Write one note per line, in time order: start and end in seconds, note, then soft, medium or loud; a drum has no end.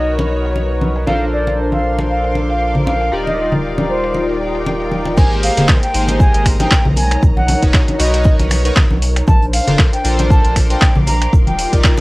0.00 1.05 B1 medium
0.00 1.04 D#4 medium
0.00 1.05 D#4 medium
0.00 1.04 F#4 medium
0.00 1.07 F#4 medium
0.00 1.05 A#4 medium
0.00 5.16 A#4 medium
0.00 1.05 B4 medium
0.00 1.05 C#5 medium
0.00 1.07 C#5 medium
0.00 0.14 D#5 medium
0.00 1.07 D#5 medium
0.19 closed hi-hat soft
0.19 muted conga medium
0.45 closed hi-hat medium
0.56 muted conga soft
0.81 high conga medium
0.96 closed hi-hat medium
1.07 3.10 A#1 medium
1.07 3.09 D4 medium
1.07 3.10 D4 medium
1.07 3.09 F4 medium
1.07 3.10 A4 medium
1.07 3.10 A#4 medium
1.07 3.10 C5 medium
1.07 1.25 F5 medium
1.07 muted conga medium
1.33 1.59 D5 medium
1.47 closed hi-hat medium
1.47 muted conga medium
1.71 1.98 F5 medium
1.71 3.95 C6 medium
1.71 closed hi-hat medium
1.71 high conga medium
1.81 5.90 F5 medium
1.98 3.95 D6 medium
1.98 closed hi-hat medium
1.98 muted conga medium
2.10 2.35 F5 medium
2.24 closed hi-hat medium
2.35 muted conga medium
2.50 2.75 F5 medium
2.50 closed hi-hat medium
2.75 low conga medium
2.87 3.12 F5 medium
2.87 muted conga medium
2.87 high conga medium
3.01 closed hi-hat medium
3.12 5.15 D#1 medium
3.12 5.16 G3 medium
3.12 5.14 D#4 medium
3.12 5.90 D#4 medium
3.12 5.15 F4 medium
3.12 5.16 F4 medium
3.12 5.15 G4 medium
3.12 5.15 A#4 medium
3.12 5.16 D5 medium
3.12 5.15 D5 medium
3.27 3.52 D#5 medium
3.27 closed hi-hat soft
3.27 muted conga soft
3.52 closed hi-hat medium
3.52 high conga medium
3.52 low conga medium
3.63 5.90 G5 medium
3.78 closed hi-hat medium
3.78 muted conga medium
3.78 high conga medium
3.89 4.24 C5 medium
4.04 closed hi-hat medium
4.14 muted conga soft
4.29 closed hi-hat medium
4.55 closed hi-hat medium
4.66 muted conga medium
4.80 closed hi-hat soft
4.91 high conga medium
5.05 closed hi-hat medium
5.05 muted conga medium
5.17 5.50 G#1 loud
5.17 7.90 G#3 medium
5.17 6.95 A#3 medium
5.17 5.52 D#4 loud
5.17 5.52 G4 medium
5.17 5.52 G#4 medium
5.17 12.01 A#4 medium
5.17 5.52 A#4 medium
5.17 6.95 C5 medium
5.17 5.52 C5 loud
5.17 6.95 G5 medium
5.17 5.36 G#5 loud
5.17 kick loud
5.17 crash loud
5.17 muted conga medium
5.17 shaker medium
5.32 closed hi-hat soft
5.43 5.69 F5 medium
5.43 open hi-hat medium
5.43 open hi-hat loud
5.55 5.65 D#1 medium
5.55 5.77 D#4 medium
5.55 5.77 G4 medium
5.55 5.78 G#4 medium
5.55 5.78 A#4 medium
5.55 5.78 C5 medium
5.55 7.90 A#5 medium
5.55 snare medium
5.55 closed hi-hat medium
5.55 low conga medium
5.68 kick loud
5.68 snare loud
5.68 clap loud
5.68 muted conga medium
5.68 shaker loud
5.83 6.09 G5 loud
5.83 closed hi-hat medium
5.90 6.56 D#4 medium
5.90 6.56 G4 medium
5.90 9.28 D#5 medium
5.94 6.27 G#1 loud
5.94 6.57 G#4 medium
5.94 6.57 A#4 medium
5.94 6.57 C5 medium
5.94 open hi-hat loud
5.94 shaker medium
5.99 6.97 C6 medium
6.08 closed hi-hat medium
6.08 muted conga medium
6.20 6.46 G#5 medium
6.20 kick loud
6.20 shaker medium
6.34 6.65 G#1 loud
6.34 closed hi-hat medium
6.45 finger snap medium
6.45 kick medium
6.45 open hi-hat loud
6.45 shaker medium
6.60 6.71 D#4 medium
6.60 6.71 G4 medium
6.60 6.71 G#4 medium
6.60 6.72 A#4 medium
6.60 6.72 C5 loud
6.60 6.86 G5 loud
6.60 closed hi-hat medium
6.60 muted conga medium
6.71 kick loud
6.71 snare loud
6.71 clap loud
6.71 shaker medium
6.85 7.16 B1 medium
6.85 high conga medium
6.85 low conga medium
6.96 9.25 D#4 medium
6.96 9.25 C#5 medium
6.96 7.23 G#5 loud
6.96 open hi-hat loud
6.96 muted conga medium
6.96 shaker medium
7.11 finger snap medium
7.11 closed hi-hat medium
7.23 7.55 B1 loud
7.23 kick loud
7.23 shaker medium
7.37 7.62 F#5 loud
7.37 high conga medium
7.48 open hi-hat loud
7.48 muted conga medium
7.48 shaker medium
7.62 7.70 F#1 medium
7.62 7.83 D#4 medium
7.62 7.83 F#4 medium
7.62 7.83 A#4 medium
7.62 7.83 B4 medium
7.62 7.83 C#5 medium
7.62 kick medium
7.62 closed hi-hat soft
7.62 closed hi-hat medium
7.69 9.28 F#4 medium
7.74 kick loud
7.74 snare loud
7.74 clap loud
7.74 shaker medium
7.88 closed hi-hat medium
7.88 muted conga medium
7.99 8.32 B1 loud
7.99 8.61 D#4 medium
7.99 8.62 F#4 medium
7.99 8.62 A#4 medium
7.99 8.62 B4 medium
7.99 8.62 C#5 medium
7.99 9.28 C#5 medium
7.99 8.35 D#5 loud
7.99 snare medium
7.99 open hi-hat loud
7.99 shaker medium
8.14 snare soft
8.14 closed hi-hat medium
8.24 kick loud
8.24 shaker medium
8.39 8.70 B1 loud
8.39 closed hi-hat medium
8.39 closed hi-hat soft
8.39 muted conga medium
8.50 finger snap medium
8.50 open hi-hat loud
8.50 high conga medium
8.50 shaker medium
8.65 8.76 D#4 medium
8.65 8.77 F#4 medium
8.65 8.77 A#4 medium
8.65 8.77 B4 medium
8.65 8.77 C#5 loud
8.65 closed hi-hat medium
8.65 closed hi-hat soft
8.76 kick loud
8.76 snare loud
8.76 clap loud
8.76 muted conga medium
8.76 shaker medium
8.91 9.22 B1 loud
8.91 high conga medium
9.02 open hi-hat loud
9.02 shaker medium
9.16 finger snap medium
9.16 closed hi-hat medium
9.28 9.60 A#1 loud
9.28 11.31 D4 medium
9.28 11.31 C5 medium
9.28 9.46 A5 loud
9.28 kick loud
9.28 muted conga medium
9.28 shaker medium
9.43 closed hi-hat soft
9.53 9.79 F5 loud
9.53 12.01 F5 medium
9.53 open hi-hat medium
9.53 open hi-hat loud
9.67 9.75 F1 medium
9.67 9.88 D4 medium
9.67 9.88 F4 medium
9.67 9.88 A4 medium
9.67 9.88 A#4 medium
9.67 9.88 C5 medium
9.67 snare medium
9.67 closed hi-hat medium
9.67 muted conga soft
9.67 low conga medium
9.78 12.01 C6 medium
9.78 kick loud
9.78 snare loud
9.78 clap loud
9.78 shaker medium
9.93 10.19 G5 loud
9.93 closed hi-hat medium
10.04 10.37 A#1 loud
10.04 10.66 D4 medium
10.04 10.67 F4 medium
10.04 10.67 A4 medium
10.04 10.67 A#4 medium
10.04 10.67 C5 medium
10.04 open hi-hat loud
10.04 shaker medium
10.19 12.01 D6 medium
10.19 closed hi-hat medium
10.19 muted conga medium
10.30 10.56 A5 loud
10.30 kick loud
10.30 shaker medium
10.45 10.75 A#1 loud
10.45 closed hi-hat medium
10.56 finger snap medium
10.56 kick medium
10.56 open hi-hat loud
10.56 muted conga soft
10.56 shaker medium
10.70 10.82 D4 medium
10.70 10.82 F4 medium
10.70 10.82 A4 medium
10.70 10.82 A#4 medium
10.70 10.82 C5 loud
10.70 10.96 G5 loud
10.70 closed hi-hat medium
10.82 kick loud
10.82 snare loud
10.82 clap loud
10.82 shaker medium
10.95 11.27 A#1 medium
10.95 high conga medium
10.95 low conga medium
11.07 11.33 A#5 loud
11.07 open hi-hat loud
11.07 muted conga medium
11.07 shaker medium
11.22 finger snap medium
11.22 closed hi-hat medium
11.33 11.65 D#1 loud
11.33 12.01 G3 medium
11.33 12.01 D#4 medium
11.33 12.01 F4 medium
11.33 12.01 D6 medium
11.33 kick loud
11.33 shaker medium
11.47 11.73 G5 loud
11.47 closed hi-hat soft
11.47 muted conga soft
11.47 high conga medium
11.59 open hi-hat loud
11.59 shaker medium
11.72 11.80 A#1 medium
11.72 11.93 D#4 medium
11.72 11.93 F4 medium
11.72 11.93 G4 medium
11.72 11.93 A#4 medium
11.72 11.93 D5 medium
11.72 kick medium
11.72 closed hi-hat medium
11.72 closed hi-hat soft
11.84 kick loud
11.84 snare loud
11.84 clap loud
11.84 shaker medium
11.98 muted conga medium